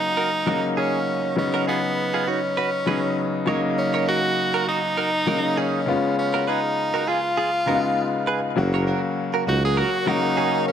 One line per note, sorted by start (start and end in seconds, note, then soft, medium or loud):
0.00 0.46 C#3 medium
0.00 0.46 F#3 medium
0.00 0.47 A#3 medium
0.00 0.74 D#4 loud
0.00 1.39 F#4 medium
0.17 0.29 F#4 medium
0.17 0.29 A#4 medium
0.46 1.13 C#3 medium
0.46 1.13 F#3 medium
0.46 1.14 A#3 medium
0.46 1.14 D#4 medium
0.46 0.59 F#4 medium
0.46 0.59 A#4 medium
0.77 0.99 C#4 medium
0.77 1.34 C#4 medium
0.77 0.99 G#4 medium
1.36 2.25 C#3 medium
1.36 2.25 F#3 medium
1.36 2.25 B3 medium
1.36 1.66 C#4 medium
1.36 2.26 D#4 medium
1.54 1.64 F#4 medium
1.54 1.63 A#4 medium
1.67 2.30 B3 medium
1.67 1.80 F4 medium
1.67 1.79 G#4 medium
2.14 2.24 F4 medium
2.14 2.23 G#4 medium
2.27 3.48 C#4 medium
2.27 2.40 D#4 medium
2.27 2.39 F#4 medium
2.57 2.70 F#4 medium
2.57 2.69 B4 medium
2.86 3.44 C#3 medium
2.86 3.45 F#3 medium
2.86 3.47 B3 medium
2.86 3.47 D#4 medium
2.86 3.00 G#4 medium
2.86 2.99 B4 medium
3.46 4.43 C#3 medium
3.46 4.43 F#3 medium
3.46 4.44 A#3 medium
3.46 4.44 D#4 loud
3.46 3.60 A#4 medium
3.46 3.59 C#5 medium
3.78 4.06 C#4 loud
3.94 4.04 A#4 medium
3.94 4.04 C#5 medium
4.07 4.20 F#4 medium
4.07 4.64 F#4 loud
4.07 4.19 A#4 medium
4.54 4.64 F#4 medium
4.54 4.64 A#4 medium
4.67 4.80 D#4 medium
4.67 5.60 D#4 loud
4.67 4.79 F#4 medium
4.97 5.10 F#4 medium
4.97 5.09 A#4 medium
5.26 5.84 C#3 medium
5.26 5.87 F#3 medium
5.26 5.87 A#3 medium
5.26 5.88 D#4 medium
5.26 5.40 F#4 medium
5.26 5.39 A#4 medium
5.57 6.18 C#4 medium
5.57 5.79 D#4 medium
5.57 5.79 G#4 medium
5.86 6.83 C#3 medium
5.86 6.83 G#3 medium
5.86 6.84 B3 medium
5.86 6.84 F4 medium
6.19 6.50 C#4 medium
6.34 6.44 F#4 medium
6.34 6.43 A#4 medium
6.47 7.10 D#4 loud
6.47 6.60 G#4 medium
6.47 6.59 B4 medium
6.94 7.04 F#4 medium
6.94 7.03 A#4 medium
7.07 7.20 F4 medium
7.07 8.28 F4 medium
7.07 7.19 G#4 medium
7.37 7.50 F4 medium
7.37 7.49 G#4 medium
7.66 8.33 C#3 medium
7.66 8.34 G#3 medium
7.66 8.34 B3 medium
7.66 7.75 D#4 medium
7.66 7.80 F#4 medium
7.66 7.79 A#4 medium
7.75 8.38 F4 medium
8.27 8.40 G#4 medium
8.27 8.39 B4 medium
8.56 8.92 F#1 loud
8.56 9.45 C#3 medium
8.56 9.45 F#3 medium
8.56 9.45 A#3 medium
8.56 9.46 F#4 loud
8.56 10.72 A#4 medium
8.56 10.72 C#5 medium
8.56 10.72 F#5 medium
8.56 10.72 C#6 medium
8.74 8.84 A#4 medium
8.74 8.83 C#5 medium
8.87 8.99 F#4 medium
8.87 8.99 A#4 medium
9.34 9.44 F#4 medium
9.34 9.43 A#4 medium
9.47 9.82 C#2 medium
9.47 9.60 D#4 medium
9.47 9.59 F#4 medium
9.47 9.63 F#4 loud
9.65 9.80 G#4 loud
9.77 9.89 F#4 medium
9.77 10.10 F#4 loud
9.77 9.89 A#4 medium
10.06 10.72 C#3 medium
10.06 10.72 F#3 medium
10.06 10.72 A#3 medium
10.06 10.67 D#4 loud
10.06 10.20 F#4 medium
10.06 10.72 F#4 medium
10.06 10.19 A#4 medium
10.37 10.59 C#4 medium
10.37 10.59 G#4 medium
10.68 10.72 C#4 medium